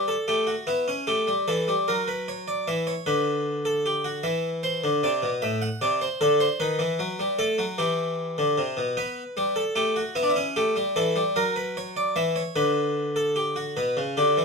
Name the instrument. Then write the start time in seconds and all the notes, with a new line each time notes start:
harpsichord
Already playing: G3
0.08 A4
0.28 A3 G4
0.47 F#4
0.67 B3 E4
0.88 C#4
1.07 A3 G4
1.27 G3
1.48 E3 A4
1.68 G3
1.88 F#3 A#4
2.08 B4
2.28 C#5
2.48 D5
2.68 E3 E5
2.87 C#5
3.06 D3 B4
3.65 A4
3.86 G4
4.04 F#4
4.23 E3 E5
4.63 C5
4.84 D3
5.03 C3 D5
5.22 B2
5.42 A2 E5
5.62 F#5
5.81 C3 D5
6.01 C5
6.21 D3 A4
6.40 C5
6.60 D#3 B4
6.79 E3
6.99 F#3
7.19 G3
7.39 A3 A4
7.58 F#3
7.78 E3 G4
8.38 D3
8.58 C3
8.77 B2
8.97 B3 B4
9.37 G3
9.56 A4
9.76 A3 G4
9.96 F#4
10.15 B3 E4
10.23 D4
10.30 E4
10.36 C#4
10.56 A3 G4
10.76 G3
10.96 E3 A4
11.16 G3
11.36 F#3 A#4
11.56 B4
11.77 C#5
11.97 D5
12.16 E3 E5
12.36 C#5
12.56 D3 B4
13.16 A4
13.36 G4
13.56 F#4
13.77 B2 B4
13.97 C#3
14.17 D3 G4
14.37 E3